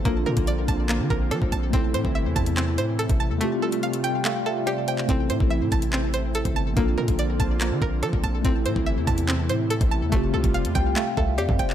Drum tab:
HH |x--xx-x-x---x-x-|x-x---xx--x-xx--|x--xxxx-x---x-x-|x-x---xx--x-xx--|
CP |--------x-------|--------x-------|--------x------x|--------x-------|
SD |------------r---|----------------|------------r---|----------------|
BD |o--o--o---o--o--|o--o--o------o--|----------------|o--o--o------o--|

HH |x--xx-x-x---x-x-|x-x---xx--x-xx--|x--xxxx-x---x-x-|
CP |--------x-------|--------x-------|--------x------x|
SD |------------r---|----------------|------------r---|
BD |o--o--o---o--o--|o--o--o------o--|o--o--o---o--o--|